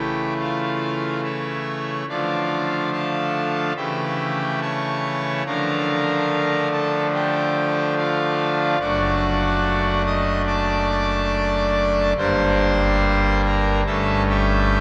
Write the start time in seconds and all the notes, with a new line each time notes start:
Already playing: C#3 E3 A3 E4 G4 G5
0.39 F4 F5
1.23 E4 C#5 E5
2.09 D3 F3 A3 D4 F4 D5 F5
2.92 A4 F5 A5
3.76 C#3 E3 A3 E4 G4 E5 G5
4.62 C#5 A5 C#6
5.45 D3 F3 A3 D4 A#4 F5 A#5
6.72 A4 A5
7.14 G4 G5
7.97 F4 D5 F5
8.80 F#1 F#2 A3 D4 F#4 D5 F#5
10.07 D#5 D#6
10.47 D5 A5 D6
12.17 G1 G2 G3 A#3 D4 C5 C6
13.45 A#4 A#5
13.86 G1 G2 A3 C#4 A4 E5 A5
14.29 G4 E5 G5